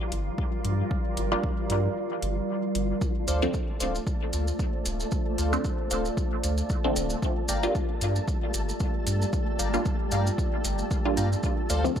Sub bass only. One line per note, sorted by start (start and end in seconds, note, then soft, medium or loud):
0.12 0.30 G1 medium
0.64 0.83 G2 medium
1.17 1.36 G1 loud
1.70 1.88 G2 medium
2.22 2.41 G1 loud
2.75 2.94 G1 medium
3.28 3.46 D2 loud
3.80 3.99 D1 medium
4.33 4.52 D2 medium
4.86 5.04 D1 medium
5.38 5.57 D2 loud
5.91 6.09 D1 medium
6.43 6.62 D2 medium
6.96 7.15 D1 medium
7.49 7.67 G1 loud
8.01 8.20 G2 medium
8.54 8.73 G1 medium
9.07 9.25 G2 medium
9.59 9.78 G1 loud
10.12 10.30 G2 medium
10.65 10.83 G1 medium
11.17 11.36 G2 medium
11.70 11.88 D2 loud